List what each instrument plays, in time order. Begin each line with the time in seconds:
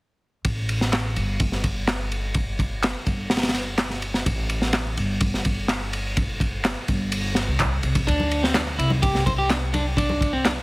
0.45 upright bass A1, kick, ride
0.69 ride
0.81 snare
0.93 snare, clap, ride
1.16 upright bass G1, ride
1.40 kick, ride
1.52 snare
1.64 kick, ride
1.88 snare, clap, ride
2.12 ride
2.34 kick, ride
2.59 kick, ride
2.83 snare, clap, ride
3.06 upright bass G1, kick, ride
3.30 snare, ride
3.37 snare, ride
3.43 snare, ride
3.49 snare, ride
3.54 snare, ride
3.78 snare, clap, ride
3.90 snare
4.02 ride
4.14 snare
4.26 upright bass A1, kick, ride
4.50 ride
4.62 snare
4.73 snare, clap, ride
4.97 upright bass G1, ride
5.21 kick, ride
5.34 snare
5.45 kick, ride
5.68 snare, clap, ride
5.93 ride
6.17 kick, ride
6.40 kick, ride
6.64 snare, clap, ride
6.88 upright bass G1, kick, ride
7.12 ride
7.35 snare, ride
7.48 upright bass C2
7.59 kick, clap, ride
7.83 upright bass C2, ride
7.95 kick, ride
8.07 upright bass D2, clean electric guitar D4, kick, ride
8.20 high conga
8.31 ride
8.43 clean electric guitar C4, snare
8.54 clean electric guitar D4, snare, clap, ride, high conga
8.78 upright bass C2, clean electric guitar E4, ride
8.90 high conga
9.02 clean electric guitar G4, kick, ride
9.15 snare, low conga
9.26 clean electric guitar C5, kick, ride, high conga, low conga
9.38 clean electric guitar G4
9.50 clean electric guitar D4, snare, clap, ride
9.74 clean electric guitar D4, ride, high conga
9.97 clean electric guitar D4, kick, ride
10.09 high conga
10.21 kick, ride
10.33 clean electric guitar C4
10.45 clean electric guitar D4, snare, clap, ride, high conga